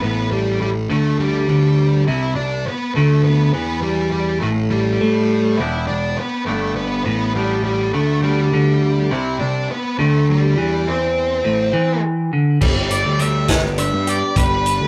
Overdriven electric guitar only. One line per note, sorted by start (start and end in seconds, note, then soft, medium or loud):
0.02 0.89 A2 medium
0.90 1.48 D3 medium
1.49 2.07 D3 medium
2.08 2.36 C3 medium
2.38 2.61 C3 medium
2.96 3.54 D3 medium
3.54 4.41 E3 medium
4.43 5.00 A2 medium
5.01 5.59 A3 medium
5.60 5.88 E2 medium
5.89 6.12 E2 medium
6.47 7.05 G2 medium
7.06 7.93 A2 medium
7.94 8.52 D3 medium
8.53 9.11 D3 medium
9.11 9.39 C3 medium
9.41 9.64 C3 medium
9.99 10.56 D3 medium
10.57 11.44 E3 medium
11.44 11.73 A2 medium
11.73 12.31 E3 loud
12.33 12.60 D3 medium
12.61 13.18 G3 medium
13.19 14.35 G3 medium
13.49 14.88 B3 medium
13.78 14.88 D4 medium
14.07 14.88 G4 medium
14.36 14.88 G3 medium